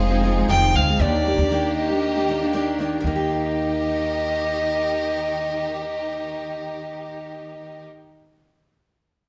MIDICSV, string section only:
0, 0, Header, 1, 2, 480
1, 0, Start_track
1, 0, Key_signature, -3, "major"
1, 0, Tempo, 511117
1, 941, Time_signature, 4, 2, 24, 8
1, 8723, End_track
2, 0, Start_track
2, 0, Title_t, "String section"
2, 0, Program_c, 0, 48
2, 0, Note_on_c, 0, 53, 85
2, 0, Note_on_c, 0, 63, 78
2, 0, Note_on_c, 0, 68, 89
2, 924, Note_off_c, 0, 63, 0
2, 924, Note_off_c, 0, 68, 0
2, 926, Note_off_c, 0, 53, 0
2, 940, Note_on_c, 0, 58, 78
2, 943, Note_on_c, 0, 67, 99
2, 945, Note_on_c, 0, 51, 77
2, 2840, Note_off_c, 0, 67, 0
2, 2841, Note_off_c, 0, 51, 0
2, 2841, Note_off_c, 0, 58, 0
2, 2849, Note_on_c, 0, 63, 74
2, 2851, Note_on_c, 0, 67, 93
2, 2852, Note_on_c, 0, 51, 83
2, 7366, Note_off_c, 0, 63, 0
2, 7368, Note_off_c, 0, 67, 0
2, 7369, Note_off_c, 0, 51, 0
2, 8723, End_track
0, 0, End_of_file